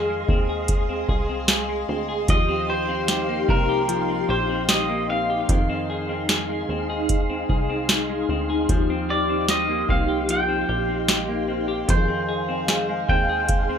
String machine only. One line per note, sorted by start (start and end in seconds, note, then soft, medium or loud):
0.00 2.26 G#4 medium
0.00 2.25 D#5 medium
0.00 5.45 F5 medium
0.00 11.85 C6 medium
2.29 13.78 D#4 medium
2.29 5.46 G4 medium
5.48 8.66 G#4 medium
5.48 13.78 F5 medium
8.69 11.86 G4 medium
11.88 13.78 G#4 medium
11.88 13.78 C6 medium